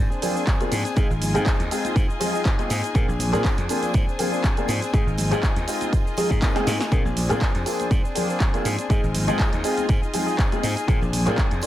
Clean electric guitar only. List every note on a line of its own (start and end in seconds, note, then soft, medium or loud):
0.00 0.11 F3 medium
0.00 0.11 C4 medium
0.00 0.10 D4 medium
0.10 0.36 C4 medium
0.10 0.35 D4 medium
0.10 0.34 G#4 medium
0.35 0.46 C4 medium
0.35 0.46 D4 medium
0.35 0.47 G#4 medium
0.47 0.70 F3 loud
0.47 0.71 C4 loud
0.47 0.72 D4 medium
0.47 0.72 G#4 loud
0.71 0.85 F3 medium
0.71 0.85 C4 medium
0.71 0.85 D4 medium
0.71 0.83 G#4 medium
0.85 0.95 C4 medium
0.85 0.97 D4 medium
0.85 0.96 G#4 medium
0.96 1.10 C4 medium
0.96 1.10 D#4 medium
0.96 1.08 G#4 loud
1.09 1.35 D#4 soft
1.09 1.33 G#4 medium
1.34 1.45 D#4 medium
1.34 1.46 G#4 medium
1.45 1.69 C4 medium
1.45 1.70 D#4 loud
1.45 1.71 G#4 loud
1.70 2.09 C4 medium
1.70 2.09 D#4 medium
1.70 2.07 G#4 medium
2.08 2.34 D#4 medium
2.08 2.32 G#4 medium
2.33 2.44 D#4 medium
2.33 2.45 G#4 medium
2.45 2.68 C4 medium
2.45 2.70 D#4 medium
2.45 2.71 G#4 loud
2.69 2.83 C4 medium
2.69 2.84 D#4 medium
2.69 2.81 G#4 medium
2.82 2.95 D#4 medium
2.82 2.94 G#4 medium
2.95 3.08 F3 medium
2.95 3.09 C4 loud
2.95 3.08 D4 loud
2.95 3.07 G#4 loud
3.08 3.34 C4 soft
3.08 3.33 D4 medium
3.08 3.31 G#4 medium
3.33 3.44 C4 soft
3.33 3.44 D4 medium
3.33 3.44 G#4 medium
3.44 3.68 F3 medium
3.44 3.69 C4 medium
3.44 3.69 D4 loud
3.44 3.70 G#4 loud
3.69 4.07 F3 medium
3.69 4.08 C4 medium
3.69 4.07 D4 medium
3.69 4.06 G#4 medium
4.07 4.33 C4 medium
4.07 4.32 D4 medium
4.07 4.31 G#4 medium
4.32 4.43 C4 medium
4.32 4.44 D4 medium
4.32 4.44 G#4 medium
4.44 4.67 F3 medium
4.44 4.68 C4 loud
4.44 4.69 D4 loud
4.44 4.69 G#4 loud
4.68 4.82 F3 medium
4.68 4.82 C4 medium
4.68 4.82 D4 medium
4.68 4.80 G#4 medium
4.81 4.92 C4 medium
4.81 4.94 D4 medium
4.81 4.93 G#4 medium
4.93 5.31 C4 medium
4.93 5.32 D#4 loud
4.93 5.30 G#4 loud
5.31 5.43 D#4 soft
5.31 5.43 G#4 medium
5.43 5.66 C4 medium
5.43 5.67 D#4 loud
5.43 5.69 G#4 loud
5.67 6.06 C4 medium
5.67 6.06 D#4 medium
5.67 6.04 G#4 medium
6.05 6.31 D#4 medium
6.05 6.29 G#4 medium
6.30 6.41 D#4 medium
6.30 6.42 G#4 medium
6.42 6.65 C4 medium
6.42 6.66 D#4 loud
6.42 6.67 G#4 loud
6.66 6.80 C4 medium
6.66 6.81 D#4 medium
6.66 6.78 G#4 medium
6.80 6.92 D#4 medium
6.80 6.91 G#4 medium
6.91 7.30 F3 medium
6.91 7.30 C4 medium
6.91 7.29 D4 loud
6.91 7.28 G#4 loud
7.29 7.40 C4 medium
7.29 7.41 D4 medium
7.29 7.41 G#4 medium
7.41 7.64 F3 medium
7.41 7.65 C4 loud
7.41 7.66 D4 loud
7.41 7.67 G#4 loud
7.65 8.04 F3 medium
7.65 8.04 C4 medium
7.65 8.04 D4 medium
7.65 8.03 G#4 medium
8.04 8.29 C4 medium
8.04 8.28 D4 medium
8.04 8.27 G#4 medium
8.28 8.39 C4 soft
8.28 8.40 D4 medium
8.28 8.40 G#4 medium
8.40 8.63 F3 medium
8.40 8.64 C4 medium
8.40 8.66 G#4 medium
8.64 8.78 F3 medium
8.64 8.79 C4 medium
8.64 8.78 D4 medium
8.64 8.76 G#4 medium
8.78 8.88 C4 medium
8.78 8.90 D4 medium
8.78 8.90 G#4 medium
8.89 9.28 C4 medium
8.89 9.28 D#4 loud
8.89 9.26 G#4 loud
9.27 9.38 D#4 medium
9.27 9.39 G#4 medium
9.39 9.62 C4 medium
9.39 9.63 D#4 loud
9.39 9.64 G#4 loud
9.63 10.02 C4 medium
9.63 10.03 D#4 medium
9.63 10.01 G#4 medium
10.02 10.28 D#4 medium
10.02 10.25 G#4 medium
10.26 10.38 D#4 medium
10.26 10.38 G#4 medium
10.38 10.62 C4 loud
10.38 10.63 D#4 loud
10.38 10.64 G#4 loud
10.63 10.77 C4 medium
10.63 10.77 D#4 medium
10.63 10.75 G#4 medium
10.76 10.88 D#4 medium
10.76 10.88 G#4 medium
10.88 11.26 F3 loud
10.88 11.27 C4 medium
10.88 11.26 D4 loud
10.88 11.24 G#4 loud
11.26 11.37 C4 medium
11.26 11.37 D4 medium
11.26 11.38 G#4 medium
11.37 11.61 F3 medium
11.37 11.62 C4 loud
11.37 11.62 D4 loud
11.37 11.63 G#4 loud
11.62 11.66 F3 medium
11.62 11.66 C4 medium